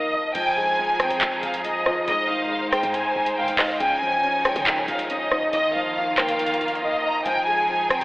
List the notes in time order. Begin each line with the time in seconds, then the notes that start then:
Already playing: D#3 F3 A#3 D#5
0.13 D#5
0.35 F1 F3 D#4 G#4 G5 G#5, closed hi-hat, crash
0.56 G#3 G#5
0.79 F3
0.99 C4 G5, cross-stick, closed hi-hat
1.10 F1, closed hi-hat
1.21 F3, clap
1.32 G1
1.43 F1 F5, closed hi-hat
1.54 closed hi-hat
1.64 C2 F3 D#5, closed hi-hat
1.86 F4, cross-stick
2.07 G#1 G#2 G#3 D#4 C5 D#5, closed hi-hat
2.29 D#3 F5
2.40 C3
2.51 G#2 F5
2.72 G#3 G5, cross-stick, closed hi-hat
2.83 G#2, closed hi-hat
2.94 G#2 G#5, closed hi-hat
3.05 C2
3.16 G#1
3.26 closed hi-hat
3.37 G#2 D#3 F5 G5
3.48 G1, closed hi-hat
3.58 G#1 D#4 D#5 F5, cross-stick, clap, open hi-hat
3.80 C#2 C#3 F3 C#4 D#4 G5 G#5, closed hi-hat
4.02 F3 G#5
4.23 C#4
4.45 G#3 G5, cross-stick, closed hi-hat
4.56 C#3, closed hi-hat
4.67 D#3, clap
4.88 C2 F5, closed hi-hat
4.99 closed hi-hat
5.10 C#4 D#5, closed hi-hat
5.31 D#4, cross-stick
5.53 D#1 D#3 A#3 F4 D#5, closed hi-hat
5.75 F3 F5
5.96 D#3 F5
6.18 A#3 F5 G5, cross-stick, clap, closed hi-hat
6.29 D#1, closed hi-hat
6.39 D#3, closed hi-hat
6.46 D#2, closed hi-hat
6.54 closed hi-hat
6.61 D#1, closed hi-hat
6.68 closed hi-hat
6.75 closed hi-hat
6.82 D#3 D#5 F5
7.04 D#5 A#5
7.25 F1 F3 D#4 G#4 G5 G#5, closed hi-hat
7.47 G#3 G#5
7.69 F3
7.90 C4 G5, cross-stick, closed hi-hat
8.01 F1, closed hi-hat